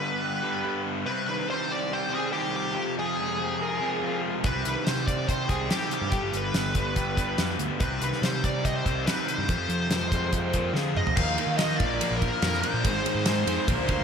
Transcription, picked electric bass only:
4.44 4.53 C2 medium
4.54 4.64 C2 medium
4.66 4.75 C2 medium
4.87 5.46 C3 medium
5.49 5.69 C2 medium
6.02 6.11 G2 medium
6.12 6.22 G1 medium
6.23 6.32 G1 medium
6.33 6.53 G1 medium
6.54 7.34 G1 medium
7.39 7.58 F2 medium
7.59 7.69 D2 medium
7.80 7.90 C2 medium
7.91 8.00 C2 medium
8.01 8.11 C2 medium
8.22 8.81 C3 medium
8.85 9.05 C2 medium
9.38 9.48 G2 medium
9.49 9.57 F2 medium
9.58 9.68 F2 medium
9.69 9.89 F2 medium
9.90 10.70 F2 medium
10.73 10.94 D3 medium
10.95 11.05 F2 medium
11.16 11.36 D#2 loud
11.47 11.77 D#3 medium
11.80 12.00 A#1 medium
12.11 12.30 A#1 medium
12.42 12.62 F2 medium
12.74 12.86 A#2 medium
12.84 13.04 G#1 loud
13.15 13.45 G#2 medium
13.46 13.57 F2 medium
13.68 13.76 A#1 loud
13.77 13.99 D2 medium
13.98 14.04 A#1 medium

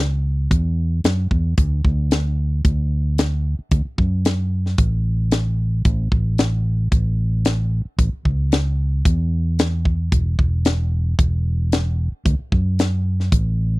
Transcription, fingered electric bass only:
0.00 0.47 C#2 medium
0.51 1.01 E2 medium
1.04 1.29 F#2 medium
1.31 1.55 E2 medium
1.58 1.83 D2 medium
1.85 2.61 D2 medium
2.65 3.54 D2 medium
3.59 muted fingered electric bass stroke soft
3.71 3.84 D2 medium
3.85 muted fingered electric bass stroke soft
3.98 4.74 F#2 medium
4.78 5.81 A1 medium
5.85 6.10 A1 medium
6.12 6.88 A1 medium
6.92 7.81 A1 medium
7.85 muted fingered electric bass stroke soft
7.98 8.11 A1 loud
8.13 muted fingered electric bass stroke soft
8.25 9.01 C#2 loud
9.06 10.08 E2 medium
10.12 10.37 E1 medium
10.39 11.15 E1 medium
11.19 12.09 E1 medium
12.12 muted fingered electric bass stroke soft
12.25 12.38 D2 loud
12.39 muted fingered electric bass stroke soft
12.52 13.28 F#2 medium
13.32 13.80 A1 medium

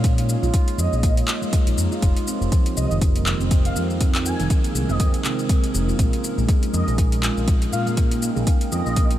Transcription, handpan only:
0.18 0.28 D#4 medium
0.43 0.53 F4 loud
0.78 0.86 F4 medium
1.03 1.11 A#3 medium
1.42 1.52 G#3 loud
1.67 1.77 D#4 medium
1.92 2.02 F4 loud
2.27 2.35 C4 medium
2.52 2.60 F3 medium
2.91 3.01 D#3 loud
3.16 3.26 A#3 medium
3.40 3.51 C4 loud
3.76 3.84 C4 medium
4.01 4.08 F3 medium
4.40 4.49 D#3 loud
4.64 4.75 A#3 medium
4.89 4.99 C4 loud
5.25 5.38 C3 medium
5.49 5.62 G#3 loud
5.74 5.87 G#3 medium
5.88 5.98 F4 medium
5.99 6.07 A#3 medium
6.38 6.47 G#3 loud
6.63 6.73 D#4 medium
6.87 6.98 G#4 medium
7.23 7.31 F4 medium
7.48 7.55 A#3 medium
7.87 7.96 G#3 loud
8.11 8.22 D#4 medium
8.36 8.46 G#4 medium
8.72 8.79 F4 medium
8.96 9.04 A#3 medium

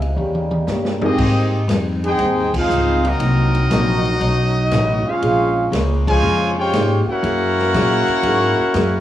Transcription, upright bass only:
0.00 0.15 C#2 medium
0.16 0.65 D#2 medium
0.67 1.16 G2 medium
1.18 1.67 G#2 medium
1.68 2.17 F2 loud
2.19 2.67 D#2 loud
2.69 3.18 C#2 loud
3.19 3.68 C2 medium
3.70 4.19 A#1 loud
4.20 4.69 B1 loud
4.71 5.03 A1 loud
5.07 muted upright bass stroke soft
5.22 5.71 A#1 loud
5.72 6.21 C#2 loud
6.23 6.71 F2 medium
6.73 7.05 G#2 loud
7.07 muted upright bass stroke soft
7.23 7.72 F#2 loud
7.74 8.06 A#2 medium
8.08 muted upright bass stroke soft
8.23 8.56 G#2 loud
8.59 muted upright bass stroke soft
8.74 9.00 F#2 loud

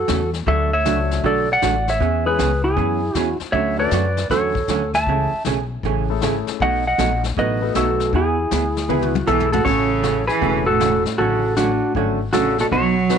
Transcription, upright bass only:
0.09 0.46 E2 medium
0.47 0.84 D2 medium
0.86 1.23 C#2 loud
1.24 1.61 B1 medium
1.63 2.00 A1 medium
2.00 2.37 E2 medium
2.39 2.76 C#2 medium
2.77 3.14 F#2 medium
3.15 3.39 E2 loud
3.40 muted upright bass stroke soft
3.53 3.91 D2 medium
3.91 4.29 F#2 loud
4.30 4.67 E2 medium
4.68 5.05 D2 loud
5.06 5.30 C#2 medium
5.33 muted upright bass stroke soft
5.46 5.83 B1 loud
5.83 6.21 A1 medium
6.22 6.45 G#1 medium
6.48 muted upright bass stroke soft
6.60 6.97 B1 medium
6.99 7.36 A#1 loud
7.37 7.74 A1 medium
7.75 8.12 B1 medium
8.13 8.50 E2 medium
8.51 8.88 D2 medium
8.89 9.26 C#2 medium
9.27 9.65 B1 medium
9.66 10.27 A1 medium
10.42 11.03 E1 medium
11.18 11.79 A1 medium
11.95 12.27 G#1 medium
12.34 12.66 A1 medium
12.72 13.18 B1 loud

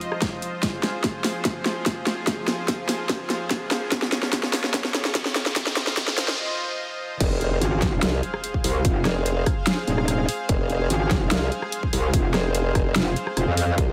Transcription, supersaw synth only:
0.00 0.59 F3 medium
0.00 5.52 F4 medium
0.00 3.88 C5 medium
0.00 0.61 D#5 loud
0.63 7.16 F3 medium
0.63 5.52 G#4 medium
3.92 5.54 C#5 medium
5.56 7.19 F4 medium
5.56 7.19 C5 medium
5.56 7.19 D#5 medium
7.21 13.74 G#4 medium
7.21 13.93 C5 medium
7.21 13.74 F5 loud
13.78 13.93 C4 medium
13.78 13.93 D#5 medium
13.78 13.93 G5 medium

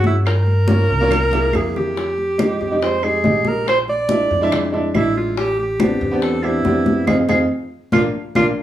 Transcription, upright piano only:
0.00 0.27 C#4 medium
0.00 0.27 F#4 medium
0.00 0.26 G#4 medium
0.68 0.91 A#3 medium
0.68 0.91 C#4 medium
0.68 0.92 F4 medium
1.01 1.11 A#3 loud
1.01 1.12 C#4 medium
1.01 1.12 F4 loud
1.32 1.47 A#3 medium
1.32 1.48 E4 medium
1.32 1.48 G#4 medium
1.54 1.96 A#3 medium
1.54 1.97 E4 medium
1.54 1.97 G#4 medium
2.38 2.61 G#3 medium
2.38 2.62 D#4 medium
2.38 2.62 G4 medium
2.71 2.93 G#3 medium
2.71 2.94 D#4 medium
2.71 2.94 G4 medium
3.02 3.18 G#3 medium
3.02 3.18 D#4 medium
3.02 3.19 G4 medium
3.24 3.67 G#3 medium
3.24 3.67 D#4 medium
3.24 3.68 G4 medium
4.09 4.32 G#3 medium
4.09 4.32 D4 medium
4.09 4.33 E4 medium
4.41 4.64 G#3 loud
4.41 4.64 D4 loud
4.41 4.65 E4 loud
4.72 4.88 G#3 medium
4.72 4.88 D4 medium
4.72 4.89 E4 medium
4.94 5.37 G#3 medium
4.94 5.37 D4 medium
4.94 5.38 E4 medium
5.80 6.02 B3 medium
5.80 6.03 C4 medium
5.80 6.03 D4 medium
5.80 6.03 G4 medium
6.11 6.34 B3 medium
6.11 6.34 C4 medium
6.11 6.35 D4 medium
6.11 6.35 G4 loud
6.43 6.58 B3 medium
6.43 6.59 C4 medium
6.43 6.59 D4 medium
6.43 6.59 G4 medium
6.65 7.07 B3 medium
6.65 7.06 C4 medium
6.65 7.08 D4 medium
6.65 7.08 G4 medium
7.07 7.21 C4 medium
7.07 7.21 D#4 medium
7.07 7.21 F4 medium
7.29 7.43 C4 loud
7.29 7.43 D#4 medium
7.29 7.43 F4 medium
7.92 8.06 A#3 loud
7.92 8.06 D4 medium
7.92 8.07 F4 medium
8.36 8.50 A#3 medium
8.36 8.49 D4 medium
8.36 8.50 F4 medium

